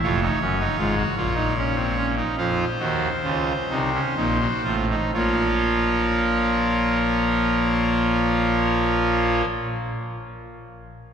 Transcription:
<<
  \new Staff \with { instrumentName = "Pipe organ" } { \time 12/8 \key bes \minor \tempo 4. = 40 << { des''2. c''2. | <f bes des''>1. | } \\ { f'16 ees'16 des'16 ees'16 f'16 ges'16 f'16 ees'16 des'16 c'16 des'16 ees'16 f'8 ges'8 f'8 ees'16 des'16 ees'16 ges'16 f'16 ees'16 | f'1. | } >> }
  \new Staff \with { instrumentName = "Pipe organ" } { \clef bass \time 12/8 \key bes \minor <f,, f,>8 <ges,, ges,>8 <aes,, aes,>8 <bes,, bes,>4. <f, f>8 <ees, ees>8 <des, des>8 <c, c>8 <bes,, bes,>8 <a,, a,>8 | <bes,, bes,>1. | }
>>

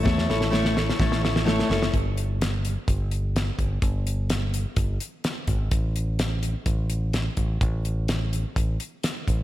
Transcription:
<<
  \new Staff \with { instrumentName = "Steel-string acoustic guitar" } { \time 4/4 \key a \mixolydian \tempo 4 = 127 <a e' a' cis''>8 <e' a' cis''>8 <a e' a' cis''>8 <e' a' cis''>8 <a e' a' cis''>8 <e' a' cis''>8 <a e' a' cis''>8 <e' a' cis''>8 | r1 | r1 | r1 |
r1 | }
  \new Staff \with { instrumentName = "Fingered electric bass" } { \clef bass \time 4/4 \key a \mixolydian e,8 a,,4. a,,4. fis,,8 | g,,2 g,,4. g,,8 | g,,2 g,,8 r4 gis,,8 | a,,2 a,,4. a,,8 |
a,,2 a,,8 r4 a,,8 | }
  \new DrumStaff \with { instrumentName = "Drums" } \drummode { \time 4/4 <bd sn>16 sn16 sn16 sn16 sn16 sn16 sn16 sn16 <bd sn>16 sn16 sn16 sn16 sn16 sn16 sn16 sn16 | <hh bd>8 hh8 <hh sn>8 hh8 <hh bd>8 hh8 <hh sn>8 <hh bd>8 | <hh bd>8 hh8 <hh sn>8 hh8 <hh bd>8 hh8 <hh sn>8 <hh bd>8 | <hh bd>8 hh8 <hh sn>8 hh8 <hh bd>8 hh8 <hh sn>8 <hh bd>8 |
<hh bd>8 hh8 <hh sn>8 hh8 <hh bd>8 hh8 <hh sn>8 <hh bd>8 | }
>>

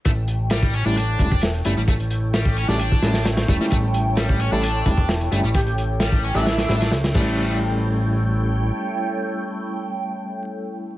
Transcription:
<<
  \new Staff \with { instrumentName = "Analog synth pad" } { \time 4/4 \key c \major \tempo 4 = 131 <e' a' cis'' g''>1~ | <e' a' cis'' g''>1~ | <e' a' cis'' g''>1~ | <e' a' cis'' g''>2.~ <e' a' cis'' g''>8 <e' a' cis'' g''>8~ |
<e' a' cis'' g''>1~ | <e' a' cis'' g''>1 | }
  \new Staff \with { instrumentName = "Digital synth lead" } { \time 4/4 \key c \major r1 | r1 | r4. r16 a'16 r2 | g'16 g'16 r4 r16 e'4 r4 r16 |
r1 | r1 | }
  \new Staff \with { instrumentName = "Tine electric piano" } { \time 4/4 \key c \major r4. r16 <g a cis' e'>16 r8 <g a cis' e'>16 r8. <g a cis' e'>16 r16 | r4. r16 <g a cis' g'>16 r8 <g a cis' e'>16 r8. <g a cis' e'>8~ | <g a cis' e'>4.~ <g a cis' e'>16 <g a cis' e'>16 r8 <g a cis' e'>16 r8. <g a cis' e'>16 r16 | r4. r16 <g a cis' g'>16 r8 <g a cis' e'>16 r8. <g a cis' e'>8~ |
<g a cis' e'>1~ | <g a cis' e'>1 | }
  \new Staff \with { instrumentName = "Distorted electric guitar" } { \time 4/4 \key c \major a16 r8. g8 cis'16 d'16 d'4 r8 a16 g16 | a16 r8. g8 cis'16 d'16 d'4 r8 a16 g16 | a16 r8. g8 cis'16 d'16 d'4 r8 a16 g16 | a16 r8. g8 cis'16 d'16 d'4 r8 a8~ |
a8 r2. r8 | r1 | }
  \new Staff \with { instrumentName = "Analog synth bass" } { \clef bass \time 4/4 \key c \major a,,4.~ a,,16 a,,8. e,,4 g,,16 a,,16~ | a,,4.~ a,,16 a,,8. a,,4 e,,16 r16 | a,,4.~ a,,16 a,,8. e,,4 g,,16 a,,16~ | a,,4.~ a,,16 a,,8. a,,8 cis,8 a,,8~ |
a,,2. r4 | r1 | }
  \new DrumStaff \with { instrumentName = "Drums" } \drummode { \time 4/4 <hh bd>8 hh8 <hh sn>16 bd16 hh8 hh8 <hh bd>16 bd16 <hh sn>16 hh16 hh8 | <hh bd>16 hh16 hh8 <hh sn>16 bd16 hh16 sn16 hh16 bd16 <hh sn>16 <hh sn>16 <hh sn>16 <hh sn>16 <hh bd>16 sn16 | <hh bd>8 hh8 <hh sn>16 bd16 hh8 hh8 <hh bd>16 bd16 <hh sn>16 hh16 hh8 | <hh bd>16 hh16 hh8 <hh sn>16 bd16 hh16 sn16 <hh sn>16 <hh sn>16 <hh sn>16 <hh sn>16 <hh sn>16 <hh sn>16 <cymc bd>8 |
r4 r4 r4 r4 | r4 r4 r4 r4 | }
>>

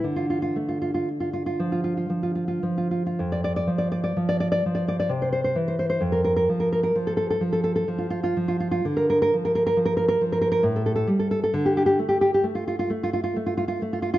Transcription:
\new Staff \with { instrumentName = "Nylon-string guitar" } { \time 3/4 \key d \minor \tempo 4 = 65 << { r32 f'32 f'32 f'32 r32 f'32 f'32 f'32 r32 f'32 f'32 f'32 r32 f'32 f'32 f'32 r32 f'32 f'32 f'32 r32 f'32 f'32 f'32 | r32 d''32 d''32 d''32 r32 d''32 d''32 d''32 r32 d''32 d''32 d''32 r32 d''32 d''32 d''32 r32 c''32 c''32 c''32 r32 c''32 c''32 c''32 | r32 bes'32 bes'32 bes'32 r32 bes'32 bes'32 bes'32 r32 a'32 a'32 a'32 r32 a'32 a'32 a'32 r32 f'32 f'32 f'32 r32 f'32 f'32 f'32 | r32 bes'32 bes'32 bes'32 r32 bes'32 bes'32 bes'32 r32 bes'32 bes'32 bes'32 r32 bes'32 bes'32 bes'32 r32 a'32 a'32 a'32 r32 a'32 a'32 a'32 |
r32 g'32 g'32 g'32 r32 g'32 g'32 g'32 r32 f'32 f'32 f'32 r32 f'32 f'32 f'32 r32 f'32 f'32 f'32 r32 f'32 f'32 f'32 | } \\ { d8 a4 f8 f8 f8 | f,8 f8 f8 f8 c8 e8 | f,8 f8 f8 f8 f8 f8 | d8 f8 f8 f8 a,8 g8 |
d8 a8 a8 a8 a8 a8 | } >> }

